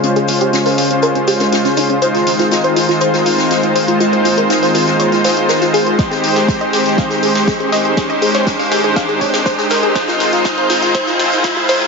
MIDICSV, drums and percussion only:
0, 0, Header, 1, 2, 480
1, 0, Start_track
1, 0, Key_signature, -4, "minor"
1, 0, Tempo, 495868
1, 37, Time_signature, 4, 2, 24, 8
1, 11493, End_track
2, 0, Start_track
2, 0, Title_t, "Drums"
2, 34, Note_on_c, 9, 42, 80
2, 36, Note_off_c, 9, 42, 0
2, 36, Note_on_c, 9, 42, 64
2, 132, Note_off_c, 9, 42, 0
2, 157, Note_on_c, 9, 42, 36
2, 254, Note_off_c, 9, 42, 0
2, 266, Note_on_c, 9, 42, 62
2, 275, Note_on_c, 9, 46, 108
2, 363, Note_off_c, 9, 42, 0
2, 372, Note_off_c, 9, 46, 0
2, 397, Note_on_c, 9, 42, 52
2, 494, Note_off_c, 9, 42, 0
2, 514, Note_on_c, 9, 42, 79
2, 515, Note_off_c, 9, 42, 0
2, 515, Note_on_c, 9, 42, 63
2, 520, Note_on_c, 9, 38, 106
2, 612, Note_off_c, 9, 42, 0
2, 617, Note_off_c, 9, 38, 0
2, 637, Note_on_c, 9, 46, 59
2, 642, Note_on_c, 9, 38, 36
2, 733, Note_off_c, 9, 46, 0
2, 739, Note_off_c, 9, 38, 0
2, 755, Note_on_c, 9, 46, 108
2, 761, Note_on_c, 9, 42, 61
2, 852, Note_off_c, 9, 46, 0
2, 857, Note_off_c, 9, 42, 0
2, 877, Note_on_c, 9, 42, 51
2, 973, Note_off_c, 9, 42, 0
2, 989, Note_on_c, 9, 42, 76
2, 995, Note_off_c, 9, 42, 0
2, 995, Note_on_c, 9, 42, 66
2, 1092, Note_off_c, 9, 42, 0
2, 1117, Note_on_c, 9, 42, 36
2, 1214, Note_off_c, 9, 42, 0
2, 1229, Note_on_c, 9, 42, 59
2, 1235, Note_on_c, 9, 46, 104
2, 1325, Note_off_c, 9, 42, 0
2, 1332, Note_off_c, 9, 46, 0
2, 1350, Note_on_c, 9, 38, 52
2, 1357, Note_on_c, 9, 42, 51
2, 1447, Note_off_c, 9, 38, 0
2, 1454, Note_off_c, 9, 42, 0
2, 1476, Note_on_c, 9, 42, 65
2, 1479, Note_off_c, 9, 42, 0
2, 1479, Note_on_c, 9, 42, 79
2, 1482, Note_on_c, 9, 38, 109
2, 1576, Note_off_c, 9, 42, 0
2, 1579, Note_off_c, 9, 38, 0
2, 1594, Note_on_c, 9, 38, 47
2, 1597, Note_on_c, 9, 42, 39
2, 1691, Note_off_c, 9, 38, 0
2, 1694, Note_off_c, 9, 42, 0
2, 1709, Note_on_c, 9, 42, 64
2, 1715, Note_on_c, 9, 46, 108
2, 1806, Note_off_c, 9, 42, 0
2, 1812, Note_off_c, 9, 46, 0
2, 1837, Note_on_c, 9, 42, 53
2, 1934, Note_off_c, 9, 42, 0
2, 1952, Note_on_c, 9, 42, 83
2, 1956, Note_off_c, 9, 42, 0
2, 1956, Note_on_c, 9, 42, 63
2, 2052, Note_off_c, 9, 42, 0
2, 2077, Note_on_c, 9, 42, 35
2, 2082, Note_on_c, 9, 38, 36
2, 2174, Note_off_c, 9, 42, 0
2, 2179, Note_off_c, 9, 38, 0
2, 2196, Note_on_c, 9, 42, 69
2, 2196, Note_on_c, 9, 46, 114
2, 2292, Note_off_c, 9, 46, 0
2, 2293, Note_off_c, 9, 42, 0
2, 2317, Note_on_c, 9, 42, 49
2, 2323, Note_on_c, 9, 38, 38
2, 2414, Note_off_c, 9, 42, 0
2, 2420, Note_off_c, 9, 38, 0
2, 2432, Note_on_c, 9, 42, 87
2, 2436, Note_off_c, 9, 42, 0
2, 2436, Note_on_c, 9, 42, 63
2, 2438, Note_on_c, 9, 38, 105
2, 2532, Note_off_c, 9, 42, 0
2, 2535, Note_off_c, 9, 38, 0
2, 2557, Note_on_c, 9, 42, 36
2, 2654, Note_off_c, 9, 42, 0
2, 2676, Note_on_c, 9, 46, 110
2, 2678, Note_on_c, 9, 42, 69
2, 2680, Note_on_c, 9, 38, 41
2, 2773, Note_off_c, 9, 46, 0
2, 2774, Note_off_c, 9, 42, 0
2, 2776, Note_off_c, 9, 38, 0
2, 2798, Note_on_c, 9, 42, 52
2, 2801, Note_on_c, 9, 38, 48
2, 2894, Note_off_c, 9, 42, 0
2, 2898, Note_off_c, 9, 38, 0
2, 2909, Note_on_c, 9, 42, 85
2, 2916, Note_off_c, 9, 42, 0
2, 2916, Note_on_c, 9, 42, 61
2, 3012, Note_off_c, 9, 42, 0
2, 3035, Note_on_c, 9, 38, 38
2, 3037, Note_on_c, 9, 42, 35
2, 3132, Note_off_c, 9, 38, 0
2, 3134, Note_off_c, 9, 42, 0
2, 3156, Note_on_c, 9, 46, 109
2, 3165, Note_off_c, 9, 46, 0
2, 3165, Note_on_c, 9, 46, 75
2, 3262, Note_off_c, 9, 46, 0
2, 3277, Note_on_c, 9, 38, 57
2, 3277, Note_on_c, 9, 42, 51
2, 3374, Note_off_c, 9, 38, 0
2, 3374, Note_off_c, 9, 42, 0
2, 3395, Note_on_c, 9, 42, 66
2, 3400, Note_on_c, 9, 38, 102
2, 3492, Note_off_c, 9, 42, 0
2, 3497, Note_off_c, 9, 38, 0
2, 3517, Note_on_c, 9, 42, 37
2, 3614, Note_off_c, 9, 42, 0
2, 3636, Note_on_c, 9, 42, 61
2, 3636, Note_on_c, 9, 46, 108
2, 3732, Note_off_c, 9, 46, 0
2, 3733, Note_off_c, 9, 42, 0
2, 3758, Note_on_c, 9, 42, 51
2, 3854, Note_off_c, 9, 42, 0
2, 3876, Note_on_c, 9, 42, 61
2, 3877, Note_off_c, 9, 42, 0
2, 3877, Note_on_c, 9, 42, 79
2, 3974, Note_off_c, 9, 42, 0
2, 3998, Note_on_c, 9, 42, 34
2, 4095, Note_off_c, 9, 42, 0
2, 4116, Note_on_c, 9, 42, 66
2, 4116, Note_on_c, 9, 46, 108
2, 4213, Note_off_c, 9, 42, 0
2, 4213, Note_off_c, 9, 46, 0
2, 4238, Note_on_c, 9, 42, 50
2, 4335, Note_off_c, 9, 42, 0
2, 4356, Note_on_c, 9, 42, 62
2, 4365, Note_on_c, 9, 38, 118
2, 4453, Note_off_c, 9, 42, 0
2, 4462, Note_off_c, 9, 38, 0
2, 4478, Note_on_c, 9, 46, 60
2, 4480, Note_on_c, 9, 38, 38
2, 4575, Note_off_c, 9, 46, 0
2, 4577, Note_off_c, 9, 38, 0
2, 4595, Note_on_c, 9, 42, 77
2, 4596, Note_on_c, 9, 46, 106
2, 4692, Note_off_c, 9, 42, 0
2, 4693, Note_off_c, 9, 46, 0
2, 4710, Note_on_c, 9, 38, 32
2, 4719, Note_on_c, 9, 42, 50
2, 4807, Note_off_c, 9, 38, 0
2, 4815, Note_off_c, 9, 42, 0
2, 4837, Note_on_c, 9, 42, 60
2, 4934, Note_off_c, 9, 42, 0
2, 4958, Note_on_c, 9, 42, 35
2, 4963, Note_on_c, 9, 38, 35
2, 5055, Note_off_c, 9, 42, 0
2, 5059, Note_off_c, 9, 38, 0
2, 5073, Note_on_c, 9, 42, 68
2, 5077, Note_on_c, 9, 46, 106
2, 5081, Note_on_c, 9, 38, 103
2, 5170, Note_off_c, 9, 42, 0
2, 5174, Note_off_c, 9, 46, 0
2, 5178, Note_off_c, 9, 38, 0
2, 5198, Note_on_c, 9, 42, 52
2, 5295, Note_off_c, 9, 42, 0
2, 5312, Note_on_c, 9, 38, 102
2, 5313, Note_on_c, 9, 42, 80
2, 5317, Note_off_c, 9, 42, 0
2, 5317, Note_on_c, 9, 42, 61
2, 5409, Note_off_c, 9, 38, 0
2, 5413, Note_off_c, 9, 42, 0
2, 5431, Note_on_c, 9, 38, 48
2, 5438, Note_on_c, 9, 42, 37
2, 5528, Note_off_c, 9, 38, 0
2, 5535, Note_off_c, 9, 42, 0
2, 5554, Note_on_c, 9, 42, 65
2, 5557, Note_on_c, 9, 46, 108
2, 5651, Note_off_c, 9, 42, 0
2, 5653, Note_off_c, 9, 46, 0
2, 5678, Note_on_c, 9, 42, 51
2, 5775, Note_off_c, 9, 42, 0
2, 5796, Note_on_c, 9, 36, 121
2, 5797, Note_on_c, 9, 38, 48
2, 5797, Note_on_c, 9, 42, 65
2, 5804, Note_off_c, 9, 42, 0
2, 5804, Note_on_c, 9, 42, 81
2, 5893, Note_off_c, 9, 36, 0
2, 5894, Note_off_c, 9, 38, 0
2, 5900, Note_off_c, 9, 42, 0
2, 5919, Note_on_c, 9, 38, 40
2, 5919, Note_on_c, 9, 42, 34
2, 6015, Note_off_c, 9, 42, 0
2, 6016, Note_off_c, 9, 38, 0
2, 6037, Note_on_c, 9, 46, 107
2, 6039, Note_on_c, 9, 42, 63
2, 6134, Note_off_c, 9, 46, 0
2, 6136, Note_off_c, 9, 42, 0
2, 6154, Note_on_c, 9, 38, 32
2, 6159, Note_off_c, 9, 38, 0
2, 6159, Note_on_c, 9, 38, 44
2, 6159, Note_on_c, 9, 42, 51
2, 6256, Note_off_c, 9, 38, 0
2, 6256, Note_off_c, 9, 42, 0
2, 6276, Note_on_c, 9, 36, 113
2, 6278, Note_on_c, 9, 38, 107
2, 6278, Note_on_c, 9, 42, 90
2, 6373, Note_off_c, 9, 36, 0
2, 6375, Note_off_c, 9, 38, 0
2, 6375, Note_off_c, 9, 42, 0
2, 6399, Note_on_c, 9, 42, 36
2, 6496, Note_off_c, 9, 42, 0
2, 6511, Note_on_c, 9, 38, 43
2, 6514, Note_on_c, 9, 42, 68
2, 6517, Note_off_c, 9, 38, 0
2, 6517, Note_on_c, 9, 38, 53
2, 6517, Note_on_c, 9, 46, 105
2, 6611, Note_off_c, 9, 42, 0
2, 6614, Note_off_c, 9, 38, 0
2, 6614, Note_off_c, 9, 46, 0
2, 6639, Note_on_c, 9, 42, 51
2, 6645, Note_on_c, 9, 38, 46
2, 6736, Note_off_c, 9, 42, 0
2, 6741, Note_off_c, 9, 38, 0
2, 6756, Note_on_c, 9, 36, 121
2, 6757, Note_on_c, 9, 38, 52
2, 6757, Note_on_c, 9, 42, 64
2, 6759, Note_off_c, 9, 42, 0
2, 6759, Note_on_c, 9, 42, 77
2, 6853, Note_off_c, 9, 36, 0
2, 6854, Note_off_c, 9, 38, 0
2, 6856, Note_off_c, 9, 42, 0
2, 6875, Note_on_c, 9, 38, 41
2, 6879, Note_on_c, 9, 42, 34
2, 6972, Note_off_c, 9, 38, 0
2, 6975, Note_off_c, 9, 42, 0
2, 6993, Note_on_c, 9, 46, 79
2, 6997, Note_off_c, 9, 46, 0
2, 6997, Note_on_c, 9, 46, 101
2, 7094, Note_off_c, 9, 46, 0
2, 7119, Note_on_c, 9, 38, 49
2, 7119, Note_on_c, 9, 42, 50
2, 7124, Note_off_c, 9, 38, 0
2, 7124, Note_on_c, 9, 38, 57
2, 7216, Note_off_c, 9, 42, 0
2, 7220, Note_off_c, 9, 38, 0
2, 7235, Note_on_c, 9, 38, 104
2, 7236, Note_on_c, 9, 36, 121
2, 7238, Note_on_c, 9, 42, 60
2, 7245, Note_off_c, 9, 42, 0
2, 7245, Note_on_c, 9, 42, 77
2, 7332, Note_off_c, 9, 38, 0
2, 7333, Note_off_c, 9, 36, 0
2, 7342, Note_off_c, 9, 42, 0
2, 7359, Note_on_c, 9, 42, 37
2, 7455, Note_off_c, 9, 42, 0
2, 7475, Note_on_c, 9, 42, 74
2, 7477, Note_on_c, 9, 38, 57
2, 7477, Note_on_c, 9, 46, 104
2, 7572, Note_off_c, 9, 42, 0
2, 7574, Note_off_c, 9, 38, 0
2, 7574, Note_off_c, 9, 46, 0
2, 7599, Note_on_c, 9, 42, 51
2, 7696, Note_off_c, 9, 42, 0
2, 7716, Note_on_c, 9, 36, 114
2, 7716, Note_on_c, 9, 42, 94
2, 7717, Note_off_c, 9, 42, 0
2, 7717, Note_on_c, 9, 38, 60
2, 7717, Note_on_c, 9, 42, 68
2, 7813, Note_off_c, 9, 36, 0
2, 7814, Note_off_c, 9, 38, 0
2, 7814, Note_off_c, 9, 42, 0
2, 7839, Note_on_c, 9, 42, 36
2, 7935, Note_off_c, 9, 42, 0
2, 7957, Note_on_c, 9, 42, 66
2, 7957, Note_on_c, 9, 46, 102
2, 8053, Note_off_c, 9, 46, 0
2, 8054, Note_off_c, 9, 42, 0
2, 8079, Note_on_c, 9, 38, 54
2, 8079, Note_on_c, 9, 42, 54
2, 8176, Note_off_c, 9, 38, 0
2, 8176, Note_off_c, 9, 42, 0
2, 8195, Note_on_c, 9, 38, 110
2, 8196, Note_on_c, 9, 36, 113
2, 8197, Note_on_c, 9, 42, 66
2, 8206, Note_off_c, 9, 42, 0
2, 8206, Note_on_c, 9, 42, 81
2, 8292, Note_off_c, 9, 38, 0
2, 8293, Note_off_c, 9, 36, 0
2, 8302, Note_off_c, 9, 42, 0
2, 8319, Note_on_c, 9, 38, 37
2, 8319, Note_on_c, 9, 46, 59
2, 8415, Note_off_c, 9, 38, 0
2, 8415, Note_off_c, 9, 46, 0
2, 8437, Note_on_c, 9, 38, 63
2, 8437, Note_on_c, 9, 42, 66
2, 8437, Note_on_c, 9, 46, 105
2, 8533, Note_off_c, 9, 42, 0
2, 8534, Note_off_c, 9, 38, 0
2, 8534, Note_off_c, 9, 46, 0
2, 8558, Note_on_c, 9, 42, 51
2, 8655, Note_off_c, 9, 42, 0
2, 8676, Note_on_c, 9, 36, 118
2, 8677, Note_on_c, 9, 38, 66
2, 8677, Note_on_c, 9, 42, 63
2, 8679, Note_off_c, 9, 42, 0
2, 8679, Note_on_c, 9, 42, 94
2, 8773, Note_off_c, 9, 36, 0
2, 8774, Note_off_c, 9, 38, 0
2, 8776, Note_off_c, 9, 42, 0
2, 8798, Note_on_c, 9, 42, 36
2, 8895, Note_off_c, 9, 42, 0
2, 8916, Note_on_c, 9, 36, 58
2, 8916, Note_on_c, 9, 42, 67
2, 8917, Note_on_c, 9, 46, 101
2, 9013, Note_off_c, 9, 36, 0
2, 9013, Note_off_c, 9, 42, 0
2, 9013, Note_off_c, 9, 46, 0
2, 9035, Note_on_c, 9, 38, 52
2, 9038, Note_off_c, 9, 38, 0
2, 9038, Note_on_c, 9, 38, 62
2, 9038, Note_on_c, 9, 42, 53
2, 9135, Note_off_c, 9, 38, 0
2, 9135, Note_off_c, 9, 42, 0
2, 9151, Note_on_c, 9, 38, 122
2, 9156, Note_on_c, 9, 36, 121
2, 9156, Note_on_c, 9, 42, 90
2, 9248, Note_off_c, 9, 38, 0
2, 9253, Note_off_c, 9, 36, 0
2, 9253, Note_off_c, 9, 42, 0
2, 9271, Note_on_c, 9, 38, 55
2, 9278, Note_on_c, 9, 42, 40
2, 9368, Note_off_c, 9, 38, 0
2, 9374, Note_off_c, 9, 42, 0
2, 9387, Note_on_c, 9, 42, 71
2, 9396, Note_on_c, 9, 38, 72
2, 9396, Note_on_c, 9, 46, 102
2, 9484, Note_off_c, 9, 42, 0
2, 9493, Note_off_c, 9, 38, 0
2, 9493, Note_off_c, 9, 46, 0
2, 9518, Note_on_c, 9, 42, 51
2, 9615, Note_off_c, 9, 42, 0
2, 9634, Note_on_c, 9, 42, 79
2, 9635, Note_on_c, 9, 36, 110
2, 9636, Note_off_c, 9, 42, 0
2, 9636, Note_on_c, 9, 38, 77
2, 9636, Note_on_c, 9, 42, 69
2, 9732, Note_off_c, 9, 36, 0
2, 9733, Note_off_c, 9, 38, 0
2, 9733, Note_off_c, 9, 42, 0
2, 9757, Note_on_c, 9, 38, 43
2, 9758, Note_on_c, 9, 42, 37
2, 9854, Note_off_c, 9, 38, 0
2, 9855, Note_off_c, 9, 42, 0
2, 9876, Note_on_c, 9, 38, 75
2, 9876, Note_on_c, 9, 46, 101
2, 9878, Note_on_c, 9, 42, 77
2, 9972, Note_off_c, 9, 38, 0
2, 9972, Note_off_c, 9, 46, 0
2, 9974, Note_off_c, 9, 42, 0
2, 9997, Note_on_c, 9, 42, 54
2, 10002, Note_on_c, 9, 38, 37
2, 10094, Note_off_c, 9, 42, 0
2, 10099, Note_off_c, 9, 38, 0
2, 10110, Note_on_c, 9, 38, 119
2, 10115, Note_on_c, 9, 36, 110
2, 10116, Note_off_c, 9, 38, 0
2, 10116, Note_on_c, 9, 38, 80
2, 10116, Note_on_c, 9, 42, 69
2, 10117, Note_off_c, 9, 42, 0
2, 10117, Note_on_c, 9, 42, 85
2, 10212, Note_off_c, 9, 36, 0
2, 10213, Note_off_c, 9, 38, 0
2, 10214, Note_off_c, 9, 42, 0
2, 10238, Note_on_c, 9, 42, 39
2, 10335, Note_off_c, 9, 42, 0
2, 10353, Note_on_c, 9, 42, 67
2, 10356, Note_on_c, 9, 38, 84
2, 10356, Note_on_c, 9, 46, 99
2, 10360, Note_off_c, 9, 38, 0
2, 10360, Note_on_c, 9, 38, 43
2, 10449, Note_off_c, 9, 42, 0
2, 10453, Note_off_c, 9, 46, 0
2, 10457, Note_off_c, 9, 38, 0
2, 10475, Note_on_c, 9, 38, 51
2, 10478, Note_on_c, 9, 42, 58
2, 10572, Note_off_c, 9, 38, 0
2, 10574, Note_off_c, 9, 42, 0
2, 10594, Note_on_c, 9, 42, 83
2, 10595, Note_on_c, 9, 36, 117
2, 10596, Note_off_c, 9, 42, 0
2, 10596, Note_on_c, 9, 38, 87
2, 10596, Note_on_c, 9, 42, 69
2, 10692, Note_off_c, 9, 36, 0
2, 10693, Note_off_c, 9, 38, 0
2, 10693, Note_off_c, 9, 42, 0
2, 10711, Note_on_c, 9, 38, 41
2, 10718, Note_on_c, 9, 42, 38
2, 10808, Note_off_c, 9, 38, 0
2, 10815, Note_off_c, 9, 42, 0
2, 10832, Note_on_c, 9, 46, 86
2, 10836, Note_off_c, 9, 46, 0
2, 10836, Note_on_c, 9, 38, 86
2, 10836, Note_on_c, 9, 46, 102
2, 10933, Note_off_c, 9, 38, 0
2, 10933, Note_off_c, 9, 46, 0
2, 10952, Note_on_c, 9, 38, 54
2, 10957, Note_on_c, 9, 42, 55
2, 11048, Note_off_c, 9, 38, 0
2, 11054, Note_off_c, 9, 42, 0
2, 11071, Note_on_c, 9, 42, 84
2, 11073, Note_on_c, 9, 38, 112
2, 11075, Note_on_c, 9, 36, 115
2, 11076, Note_off_c, 9, 38, 0
2, 11076, Note_off_c, 9, 42, 0
2, 11076, Note_on_c, 9, 38, 90
2, 11076, Note_on_c, 9, 42, 70
2, 11172, Note_off_c, 9, 36, 0
2, 11173, Note_off_c, 9, 38, 0
2, 11173, Note_off_c, 9, 42, 0
2, 11198, Note_on_c, 9, 42, 39
2, 11295, Note_off_c, 9, 42, 0
2, 11314, Note_on_c, 9, 42, 67
2, 11316, Note_on_c, 9, 38, 88
2, 11316, Note_on_c, 9, 46, 99
2, 11411, Note_off_c, 9, 42, 0
2, 11413, Note_off_c, 9, 38, 0
2, 11413, Note_off_c, 9, 46, 0
2, 11438, Note_on_c, 9, 42, 55
2, 11493, Note_off_c, 9, 42, 0
2, 11493, End_track
0, 0, End_of_file